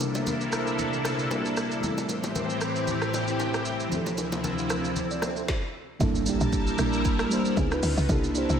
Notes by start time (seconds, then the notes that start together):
Already playing: C3 G3 A#3 D4 E4 A4
0.00 high bongo, low bongo, shaker
0.15 low bongo, shaker
0.26 high bongo, low conga, shaker
0.41 shaker
0.52 cross-stick, shaker
0.67 shaker
0.79 low conga, shaker
0.93 shaker
1.05 cross-stick, low bongo, shaker
1.19 shaker
1.30 C3 G3 A#3 D4 E4 F#4, high bongo, shaker
1.40 G4
1.45 shaker
1.57 cross-stick, shaker
1.71 shaker
1.80 A2 E3 G3 A3 B3 C4 G4, swell, low conga, shaker
1.86 E4 A4
1.90 C4
1.98 low bongo, shaker
2.09 high bongo, low bongo, shaker
2.23 low bongo, shaker
2.35 high bongo, low conga, shaker
2.50 shaker
2.61 cross-stick, shaker
2.76 shaker
2.87 low conga, shaker
3.02 cross-stick, shaker
3.14 low bongo, shaker
3.28 shaker
3.40 high bongo, shaker
3.54 cross-stick, shaker
3.65 shaker
3.80 shaker
3.89 D2 C3 F3 C4 D4 E4, low conga, shaker
3.94 E4 A4
4.06 low bongo, shaker
4.18 high bongo, low bongo, shaker
4.32 low bongo, shaker
4.44 high bongo, low conga, shaker
4.58 shaker
4.70 cross-stick, high bongo, shaker
4.84 shaker
4.96 low conga, shaker
5.11 D5, shaker
5.22 C5 E5, cross-stick, low bongo, shaker
5.36 A4 C5, shaker
5.48 kick, snare
5.99 G1 G3 A#3 D4 E4 A4 A#4 A5, kick, impact, shaker
6.15 shaker
6.26 G3 A#3 D4 E4 G4, shaker
6.41 A#1, shaker
6.53 kick, shaker
6.67 shaker
6.78 A#1 G3 A#3 D4 E4 A#4, cross-stick, shaker
6.93 shaker
7.05 kick, shaker
7.19 cross-stick, shaker
7.30 G3 A#3 D4 E4 C5, shaker
7.45 shaker
7.56 C#2 B3 C#4 D#4 F4 G#4, kick, shaker
7.70 B3 C#4 D#4 F4 B4, cross-stick, shaker
7.83 D2, open hi-hat, shaker
7.97 C#2, shaker
8.08 C2 C3 A#3 D4 E4 G4 A4, kick, shaker
8.24 shaker
8.34 A#3 D4 E4 G4 C5, shaker
8.49 C2, shaker